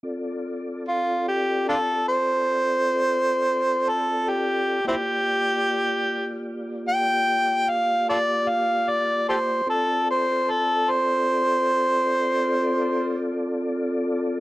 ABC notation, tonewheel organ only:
X:1
M:12/8
L:1/8
Q:3/8=50
K:Dm
V:1 name="Tonewheel organ"
[CFAd]12 | [B,FGd]12 | [CFAd]12 |]